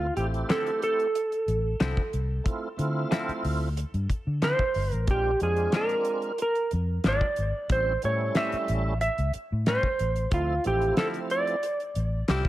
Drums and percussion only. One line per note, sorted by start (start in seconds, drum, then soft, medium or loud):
0.17 closed hi-hat medium
0.34 closed hi-hat soft
0.50 snare loud
0.50 closed hi-hat medium
0.66 closed hi-hat soft
0.82 closed hi-hat medium
1.00 closed hi-hat soft
1.15 closed hi-hat medium
1.32 closed hi-hat soft
1.48 closed hi-hat medium
1.80 snare loud
1.80 closed hi-hat medium
1.97 kick medium
2.13 closed hi-hat medium
2.46 kick loud
2.46 closed hi-hat medium
2.79 closed hi-hat medium
3.12 snare loud
3.12 closed hi-hat medium
3.29 closed hi-hat soft
3.44 open hi-hat medium
3.77 closed hi-hat medium
3.94 closed hi-hat soft
4.10 kick medium
4.10 closed hi-hat medium
4.42 snare loud
4.42 closed hi-hat medium
4.59 kick medium
4.74 open hi-hat medium
4.92 closed hi-hat soft
5.07 kick loud
5.07 closed hi-hat medium
5.40 closed hi-hat medium
5.56 closed hi-hat soft
5.72 snare loud
5.72 closed hi-hat medium
5.89 closed hi-hat soft
6.05 closed hi-hat medium
6.22 closed hi-hat soft
6.38 closed hi-hat medium
6.55 closed hi-hat soft
6.71 closed hi-hat medium
7.04 snare loud
7.04 closed hi-hat medium
7.21 kick medium
7.36 closed hi-hat medium
7.69 kick loud
7.69 closed hi-hat medium
8.02 closed hi-hat medium
8.35 snare loud
8.35 closed hi-hat medium
8.52 closed hi-hat soft
8.68 closed hi-hat medium
9.01 closed hi-hat medium
9.18 closed hi-hat soft
9.33 closed hi-hat medium
9.66 snare loud
9.66 closed hi-hat medium
9.83 kick medium
9.99 closed hi-hat medium
10.16 closed hi-hat soft
10.31 kick loud
10.31 closed hi-hat medium
10.64 closed hi-hat medium
10.81 closed hi-hat soft
10.97 snare loud
10.97 closed hi-hat medium
11.14 closed hi-hat soft
11.30 closed hi-hat medium
11.47 closed hi-hat soft
11.63 closed hi-hat medium
11.80 closed hi-hat soft
11.95 closed hi-hat medium
12.28 snare medium
12.28 closed hi-hat medium
12.45 kick medium